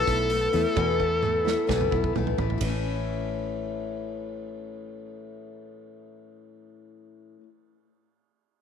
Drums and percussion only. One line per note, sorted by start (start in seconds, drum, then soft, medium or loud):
0.07 kick medium
0.07 open hi-hat soft
0.30 open hi-hat medium
0.53 open hi-hat soft
0.77 kick loud
1.00 kick medium
1.23 mid tom medium
1.47 snare medium
1.69 kick medium
1.69 snare medium
1.81 mid tom medium
1.92 kick medium
2.04 kick medium
2.16 floor tom medium
2.27 floor tom medium
2.38 floor tom medium
2.50 floor tom medium
2.61 kick medium
2.61 ride medium